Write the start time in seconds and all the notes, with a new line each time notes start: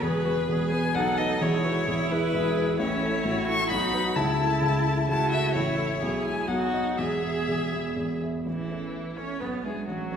0.02 E1 E2 G#4 B4
0.24 G#3 B3 F#4 B4
0.48 E1 E2 G#4
0.71 G#3 B3 B4 G#5
0.95 B1 B2 D#4 A4 F#5
1.18 A3 D#4 B4 D#5
1.41 E1 E2 E4 G#4 C#5
1.64 G#3 E4 F#4 B4
1.87 E1 E2 G#4
2.10 G#3 E4 G#4 B4
2.34 E1 E2 G#4
2.57 G#3 E4 B4
2.79 A1 A2 C#4 E4 C#5
3.03 A3 E4 A4
3.25 A1 A2 F#4
3.47 A3 E4 A4 C#6
3.70 B1 B2 D#4 B5
3.93 F#3 D#4 B4
4.16 C#2 C#3 E4 A5
4.39 A3 E4 E5
4.61 C#2 C#3
4.85 A3 E4 E5
5.09 C#2 C#3 E4 F#4 A5
5.31 A3 E4 E5
5.54 A1 A2 E4 C#5
5.77 A3 E4 E5
6.00 B1 B2 E4 G#4
6.25 G#3 E4 E5 G#5
6.48 B1 B2 D#4 F#4 F#5
6.73 B3 F#4 D#5
6.97 E1 E2 G#4 E5
7.23 B3 G#4 E5
7.48 E1 E2
7.72 B3 G#4 E5
7.96 E1 E2
8.23 B3 G#4 E5
8.46 A1 E3 E4
8.71 C#4 A4 E5
9.17 C#4 A4 C#5 E5
9.40 B1 B3 B4
9.64 G#3 D4 G#4 E5
9.87 A1 F#3 F#4
10.11 C#4 A4 C#5